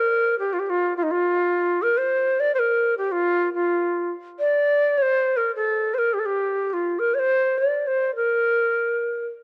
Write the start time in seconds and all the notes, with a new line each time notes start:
Already playing: A#4
0.39 G4
0.53 F4
0.59 G4
0.66 F4 G4
0.97 F4
1.03 D#4
1.11 F4
1.82 A#4
1.98 C5
2.40 D5
2.55 C5
2.59 A#4
2.98 G4
3.12 F4
3.54 F4
4.40 D5
4.98 C#5
5.02 C5
5.37 A#4
5.56 A4
5.94 C5
5.98 A#4
6.13 G4
6.19 A4
6.26 G4
6.70 F4 G4
6.99 A#4
7.14 C#5
7.19 C5
7.58 D5
7.87 C5
8.16 A#4